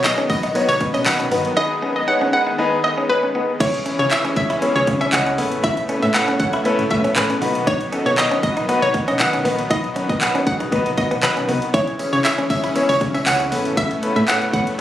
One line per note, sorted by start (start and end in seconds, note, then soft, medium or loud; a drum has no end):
0.00 3.56 D#3 medium
0.00 1.55 F#3 medium
0.00 3.56 B3 medium
0.04 0.21 B3 medium
0.04 0.21 D#4 medium
0.04 0.21 F#4 medium
0.04 0.21 G#4 medium
0.04 0.22 D#5 medium
0.04 clap loud
0.04 closed hi-hat loud
0.04 tambourine medium
0.18 0.27 C#4 medium
0.18 closed hi-hat soft
0.30 0.46 B1 loud
0.30 0.46 B3 medium
0.30 0.46 D#4 medium
0.30 0.46 F#4 medium
0.30 0.46 B4 medium
0.30 0.39 D#5 medium
0.30 muted clean electric guitar stroke soft
0.30 kick loud
0.30 closed hi-hat medium
0.30 tambourine soft
0.43 0.52 D#4 medium
0.43 closed hi-hat medium
0.43 tambourine soft
0.55 0.72 B3 loud
0.55 0.65 B3 loud
0.55 0.72 D#4 loud
0.55 0.72 F#4 medium
0.55 0.72 C#5 loud
0.55 closed hi-hat medium
0.55 tambourine medium
0.68 0.76 B1 loud
0.68 0.77 C#5 medium
0.68 closed hi-hat medium
0.68 tambourine medium
0.80 0.97 B2 loud
0.80 0.97 B3 medium
0.80 0.97 D#4 medium
0.80 0.97 F#4 medium
0.80 0.97 B4 medium
0.80 muted clean electric guitar stroke soft
0.80 kick medium
0.80 closed hi-hat medium
0.94 1.03 C#4 medium
0.94 1.02 D#5 medium
0.94 closed hi-hat medium
0.94 tambourine soft
1.06 1.22 B1 medium
1.06 1.22 B3 medium
1.06 1.23 D#4 medium
1.06 1.23 F#4 medium
1.06 1.23 B4 medium
1.06 1.43 F#5 medium
1.06 muted clean electric guitar stroke soft
1.06 clap loud
1.06 closed hi-hat loud
1.06 tambourine medium
1.20 1.28 C#4 medium
1.20 closed hi-hat medium
1.31 1.47 G1 medium
1.31 1.48 B3 medium
1.31 1.41 B3 medium
1.31 1.48 D#4 medium
1.31 1.48 F#4 medium
1.31 1.48 B4 medium
1.31 open hi-hat medium
1.31 tambourine medium
1.45 closed hi-hat medium
1.57 3.58 G#3 medium
1.57 1.73 B3 loud
1.57 1.73 D#4 medium
1.57 1.67 D#4 medium
1.57 1.73 G#4 loud
1.57 1.74 B4 loud
1.57 1.66 D#5 loud
1.82 1.99 B3 medium
1.82 1.92 C#4 medium
1.82 1.99 D#4 medium
1.82 1.99 G#4 medium
1.82 1.99 B4 medium
1.96 2.04 D#5 medium
1.96 muted clean electric guitar stroke soft
2.08 2.24 B3 medium
2.08 2.24 D#4 medium
2.08 2.24 G#4 medium
2.08 2.24 C#5 medium
2.08 2.25 F#5 medium
2.21 2.30 C#4 medium
2.33 2.50 B3 medium
2.33 2.50 D#4 medium
2.33 2.50 G#4 medium
2.33 2.50 B4 medium
2.33 2.42 F#5 medium
2.33 muted clean electric guitar stroke soft
2.47 2.55 D#4 medium
2.58 2.75 B3 loud
2.58 2.68 B3 loud
2.58 2.75 D#4 loud
2.58 2.75 G#4 loud
2.58 2.75 B4 loud
2.84 3.00 B3 medium
2.84 3.01 D#4 medium
2.84 3.01 G#4 medium
2.84 3.01 B4 medium
2.84 3.01 D#5 medium
2.84 muted clean electric guitar stroke soft
2.98 3.06 C#4 medium
3.09 3.26 B3 medium
3.09 3.26 D#4 medium
3.09 3.26 G#4 medium
3.09 3.46 B4 medium
3.09 3.26 C#5 medium
3.09 muted clean electric guitar stroke soft
3.23 3.32 C#4 medium
3.35 3.51 B3 medium
3.35 3.45 B3 medium
3.35 3.51 D#4 medium
3.35 3.52 G#4 medium
3.35 3.52 B4 medium
3.60 3.76 C#2 loud
3.60 5.36 E3 medium
3.60 5.36 G#3 medium
3.60 3.77 C#4 loud
3.60 5.37 C#4 medium
3.60 3.77 E4 medium
3.60 3.70 E4 medium
3.60 3.77 G#4 medium
3.60 3.70 C#5 loud
3.60 3.77 C#5 loud
3.60 kick loud
3.60 closed hi-hat loud
3.60 crash loud
3.74 closed hi-hat soft
3.86 4.02 C#4 medium
3.86 3.96 C#4 medium
3.86 4.02 E4 medium
3.86 4.02 G#4 medium
3.86 4.02 C#5 medium
3.86 closed hi-hat medium
3.99 4.07 C#3 medium
3.99 4.07 C#5 medium
3.99 muted clean electric guitar stroke soft
3.99 closed hi-hat medium
4.11 4.28 C#4 medium
4.11 4.28 E4 medium
4.11 4.28 G#4 medium
4.11 4.28 C#5 medium
4.11 4.29 E5 medium
4.11 clap loud
4.11 closed hi-hat loud
4.25 4.33 C#4 medium
4.25 closed hi-hat soft
4.36 4.52 C#2 loud
4.36 4.53 C#4 medium
4.36 4.53 E4 medium
4.36 4.53 G#4 medium
4.36 4.53 C#5 medium
4.36 4.46 E5 medium
4.36 muted clean electric guitar stroke soft
4.36 kick loud
4.36 closed hi-hat medium
4.50 4.59 E4 medium
4.50 closed hi-hat medium
4.62 4.72 B3 loud
4.62 4.78 C#4 loud
4.62 4.78 E4 medium
4.62 4.78 G#4 loud
4.62 4.79 C#5 loud
4.62 closed hi-hat medium
4.76 4.83 C#2 loud
4.76 4.84 C#5 medium
4.76 closed hi-hat medium
4.87 5.03 C#3 loud
4.87 5.04 C#4 medium
4.87 5.04 E4 medium
4.87 5.04 G#4 medium
4.87 5.04 C#5 medium
4.87 muted clean electric guitar stroke soft
4.87 kick loud
4.87 closed hi-hat medium
5.01 5.10 C#4 medium
5.01 5.09 E5 medium
5.01 closed hi-hat medium
5.13 5.40 C#2 loud
5.13 5.29 C#4 medium
5.13 5.29 E4 medium
5.13 5.29 G#4 medium
5.13 5.29 D#5 medium
5.13 5.49 F#5 medium
5.13 clap loud
5.13 closed hi-hat loud
5.26 5.35 C#4 medium
5.26 closed hi-hat medium
5.38 5.70 A1 loud
5.38 7.40 C#3 medium
5.38 7.40 A3 medium
5.38 5.48 B3 medium
5.38 11.70 B3 medium
5.38 5.79 C#4 medium
5.38 5.79 E4 medium
5.38 5.80 A4 medium
5.38 5.80 B4 medium
5.38 open hi-hat medium
5.52 closed hi-hat medium
5.64 5.74 E4 medium
5.64 5.73 E5 loud
5.64 kick loud
5.64 closed hi-hat loud
5.77 closed hi-hat medium
5.89 6.05 C#4 medium
5.89 5.99 C#4 medium
5.89 6.05 E4 medium
5.89 6.06 A4 medium
5.89 6.06 B4 medium
5.89 closed hi-hat medium
6.03 6.10 A2 medium
6.03 6.11 E5 medium
6.03 muted clean electric guitar stroke soft
6.03 closed hi-hat medium
6.14 6.31 C#4 medium
6.14 6.31 E4 medium
6.14 6.31 A4 medium
6.14 6.31 B4 medium
6.14 6.32 F#5 medium
6.14 clap loud
6.14 closed hi-hat loud
6.28 6.37 C#4 medium
6.28 closed hi-hat soft
6.40 6.56 A1 medium
6.40 6.56 C#4 medium
6.40 6.56 E4 medium
6.40 6.56 A4 medium
6.40 6.57 C#5 medium
6.40 6.49 F#5 medium
6.40 muted clean electric guitar stroke soft
6.40 kick loud
6.40 closed hi-hat medium
6.53 6.62 E4 medium
6.53 closed hi-hat medium
6.65 6.75 B3 loud
6.65 6.82 C#4 loud
6.65 6.82 E4 loud
6.65 6.82 A4 loud
6.65 6.82 B4 loud
6.65 closed hi-hat medium
6.79 6.86 A1 medium
6.79 closed hi-hat medium
6.91 7.07 A2 loud
6.91 7.07 C#4 medium
6.91 7.07 E4 medium
6.91 7.07 A4 medium
6.91 7.07 B4 medium
6.91 7.08 E5 medium
6.91 muted clean electric guitar stroke soft
6.91 kick loud
6.91 closed hi-hat medium
7.04 7.13 C#4 medium
7.04 closed hi-hat medium
7.16 7.32 A1 loud
7.16 7.33 C#4 medium
7.16 7.33 E4 medium
7.16 7.33 A4 medium
7.16 7.53 B4 medium
7.16 7.33 B4 medium
7.16 muted clean electric guitar stroke medium
7.16 clap loud
7.16 closed hi-hat loud
7.30 7.38 C#4 medium
7.30 closed hi-hat medium
7.42 7.73 B1 loud
7.42 11.70 D#3 medium
7.42 11.70 F#3 medium
7.42 7.83 B3 medium
7.42 7.51 B3 medium
7.42 7.83 D#4 medium
7.42 7.83 F#4 medium
7.42 7.83 B4 medium
7.42 open hi-hat medium
7.55 closed hi-hat medium
7.67 7.77 D#4 medium
7.67 7.76 C#5 loud
7.67 kick loud
7.67 closed hi-hat loud
7.81 closed hi-hat medium
7.92 8.09 B3 medium
7.92 8.02 C#4 medium
7.92 8.09 D#4 medium
7.92 8.09 F#4 medium
7.92 8.09 A4 medium
7.92 closed hi-hat medium
8.06 8.13 B2 loud
8.06 8.14 C#5 medium
8.06 muted clean electric guitar stroke soft
8.06 closed hi-hat medium
8.18 8.34 B3 medium
8.18 8.34 D#4 medium
8.18 8.34 F#4 medium
8.18 8.35 C#5 medium
8.18 8.35 D#5 medium
8.18 clap loud
8.18 closed hi-hat loud
8.31 8.40 C#4 medium
8.31 closed hi-hat medium
8.43 8.59 B1 loud
8.43 8.60 B3 medium
8.43 8.60 D#4 medium
8.43 8.60 F#4 medium
8.43 8.60 B4 medium
8.43 8.53 D#5 medium
8.43 muted clean electric guitar stroke soft
8.43 kick loud
8.43 closed hi-hat medium
8.57 8.66 D#4 medium
8.57 closed hi-hat medium
8.69 8.85 B3 loud
8.69 8.79 B3 loud
8.69 8.85 D#4 loud
8.69 8.85 F#4 loud
8.69 8.85 B4 loud
8.69 closed hi-hat medium
8.82 8.90 B1 loud
8.82 8.90 C#5 medium
8.82 closed hi-hat medium
8.94 9.10 B2 loud
8.94 9.11 B3 medium
8.94 9.11 D#4 medium
8.94 9.11 F#4 medium
8.94 9.11 B4 medium
8.94 muted clean electric guitar stroke soft
8.94 kick loud
8.94 closed hi-hat medium
9.08 9.16 C#4 medium
9.08 9.16 D#5 medium
9.08 closed hi-hat medium
9.19 9.36 B1 medium
9.19 9.36 B3 medium
9.19 9.36 D#4 medium
9.19 9.36 F#4 medium
9.19 9.36 B4 medium
9.19 9.56 F#5 medium
9.19 clap loud
9.19 closed hi-hat loud
9.33 9.42 C#4 medium
9.33 closed hi-hat medium
9.45 9.61 A#1 loud
9.45 9.61 B3 medium
9.45 9.55 B3 medium
9.45 9.61 D#4 medium
9.45 9.62 F#4 medium
9.45 9.62 B4 medium
9.45 open hi-hat medium
9.59 closed hi-hat medium
9.70 9.86 B1 loud
9.70 9.87 B3 loud
9.70 9.87 D#4 medium
9.70 9.80 D#4 medium
9.70 9.87 F#4 medium
9.70 9.87 B4 loud
9.70 9.80 D#5 loud
9.70 kick loud
9.70 closed hi-hat loud
9.84 closed hi-hat soft
9.96 10.12 B3 medium
9.96 10.06 C#4 medium
9.96 10.12 D#4 medium
9.96 10.12 F#4 medium
9.96 10.12 B4 medium
9.96 closed hi-hat medium
10.09 10.17 B2 medium
10.09 10.18 D#5 medium
10.09 muted clean electric guitar stroke medium
10.09 kick medium
10.09 closed hi-hat medium
10.21 10.38 B3 medium
10.21 10.38 D#4 medium
10.21 10.38 F#4 medium
10.21 10.38 B4 medium
10.21 10.39 F#5 medium
10.21 clap loud
10.21 closed hi-hat loud
10.35 10.44 C#4 medium
10.35 closed hi-hat medium
10.46 10.63 B1 medium
10.46 10.63 B3 medium
10.46 10.63 D#4 medium
10.46 10.63 F#4 medium
10.46 10.63 G#4 medium
10.46 10.56 F#5 medium
10.46 muted clean electric guitar stroke soft
10.46 kick loud
10.46 closed hi-hat medium
10.60 10.69 D#4 medium
10.60 closed hi-hat medium
10.72 10.88 B3 loud
10.72 10.82 B3 loud
10.72 10.89 D#4 loud
10.72 10.89 F#4 loud
10.72 10.89 B4 loud
10.72 kick loud
10.72 closed hi-hat medium
10.86 10.93 B1 loud
10.86 closed hi-hat medium
10.97 11.14 B2 loud
10.97 11.14 B3 medium
10.97 11.14 D#4 medium
10.97 11.14 F#4 medium
10.97 11.14 B4 medium
10.97 11.15 D#5 medium
10.97 muted clean electric guitar stroke soft
10.97 kick loud
10.97 closed hi-hat medium
11.11 11.20 B3 medium
11.11 closed hi-hat medium
11.23 11.39 B1 medium
11.23 11.39 B3 medium
11.23 11.39 D#4 medium
11.23 11.40 F#4 medium
11.23 11.60 B4 medium
11.23 11.40 B4 medium
11.23 muted clean electric guitar stroke soft
11.23 clap loud
11.23 closed hi-hat loud
11.37 11.45 C#4 medium
11.37 closed hi-hat medium
11.48 11.57 C2 loud
11.48 11.65 B3 medium
11.48 11.58 B3 medium
11.48 11.65 D#4 medium
11.48 11.65 F#4 medium
11.48 11.65 B4 medium
11.48 open hi-hat medium
11.62 closed hi-hat medium
11.74 11.90 C#2 loud
11.74 13.50 E3 medium
11.74 13.50 G#3 medium
11.74 11.90 C#4 loud
11.74 13.50 C#4 medium
11.74 11.90 E4 medium
11.74 11.84 E4 medium
11.74 11.90 G#4 medium
11.74 11.83 C#5 loud
11.74 11.91 C#5 loud
11.74 kick loud
11.74 closed hi-hat loud
11.74 tambourine soft
11.87 closed hi-hat medium
11.99 12.16 C#4 medium
11.99 12.09 C#4 medium
11.99 12.16 E4 medium
11.99 12.16 G#4 medium
11.99 12.16 C#5 medium
11.99 closed hi-hat medium
11.99 tambourine medium
12.13 12.20 C#3 medium
12.13 12.21 C#5 medium
12.13 muted clean electric guitar stroke soft
12.13 closed hi-hat medium
12.13 tambourine soft
12.24 12.41 C#4 medium
12.24 12.41 E4 medium
12.24 12.41 G#4 medium
12.24 12.41 C#5 medium
12.24 12.42 E5 medium
12.24 clap loud
12.24 closed hi-hat loud
12.24 tambourine loud
12.38 12.47 C#4 medium
12.38 closed hi-hat medium
12.50 12.66 C#2 loud
12.50 12.67 C#4 medium
12.50 12.67 E4 medium
12.50 12.67 G#4 medium
12.50 12.67 C#5 medium
12.50 12.59 E5 medium
12.50 muted clean electric guitar stroke soft
12.50 kick loud
12.50 closed hi-hat medium
12.50 tambourine medium
12.64 12.72 E4 medium
12.64 closed hi-hat medium
12.64 tambourine soft
12.75 12.85 B3 loud
12.75 12.92 C#4 loud
12.75 12.92 E4 loud
12.75 12.92 G#4 loud
12.75 12.92 C#5 loud
12.75 closed hi-hat medium
12.75 tambourine medium
12.89 12.96 C#2 loud
12.89 12.97 C#5 medium
12.89 closed hi-hat medium
12.89 tambourine medium
13.01 13.17 C#3 loud
13.01 13.17 C#4 medium
13.01 13.17 E4 medium
13.01 13.17 G#4 medium
13.01 13.18 C#5 medium
13.01 muted clean electric guitar stroke soft
13.01 kick loud
13.01 closed hi-hat medium
13.14 13.23 C#4 medium
13.14 13.23 E5 medium
13.14 closed hi-hat medium
13.14 tambourine soft
13.26 13.53 C#2 loud
13.26 13.43 C#4 medium
13.26 13.43 E4 medium
13.26 13.43 G#4 medium
13.26 13.43 C#5 medium
13.26 13.63 F#5 medium
13.26 muted clean electric guitar stroke soft
13.26 clap loud
13.26 closed hi-hat loud
13.26 tambourine medium
13.40 13.49 C#4 medium
13.40 closed hi-hat medium
13.52 13.83 A1 loud
13.52 14.81 C#3 medium
13.52 14.81 A3 medium
13.52 14.81 B3 medium
13.52 13.62 B3 medium
13.52 13.93 C#4 medium
13.52 13.93 E4 medium
13.52 13.93 A4 medium
13.52 13.93 B4 medium
13.52 open hi-hat medium
13.52 tambourine medium
13.65 closed hi-hat medium
13.65 tambourine soft
13.77 13.86 E5 loud
13.77 kick loud
13.77 closed hi-hat loud
13.91 closed hi-hat medium
14.02 14.19 C#4 medium
14.02 14.19 E4 medium
14.02 14.19 A4 medium
14.02 14.19 B4 medium
14.02 closed hi-hat medium
14.16 14.24 A2 loud
14.16 14.24 E5 medium
14.16 closed hi-hat medium
14.28 14.44 C#4 medium
14.28 14.45 E4 medium
14.28 14.45 A4 medium
14.28 14.45 B4 medium
14.28 14.45 F#5 medium
14.28 clap loud
14.28 closed hi-hat loud
14.42 closed hi-hat medium
14.53 14.69 A1 medium
14.53 14.70 C#4 medium
14.53 14.70 E4 medium
14.53 14.70 A4 medium
14.53 14.70 B4 medium
14.53 14.63 F#5 medium
14.53 kick loud
14.53 closed hi-hat medium
14.67 closed hi-hat medium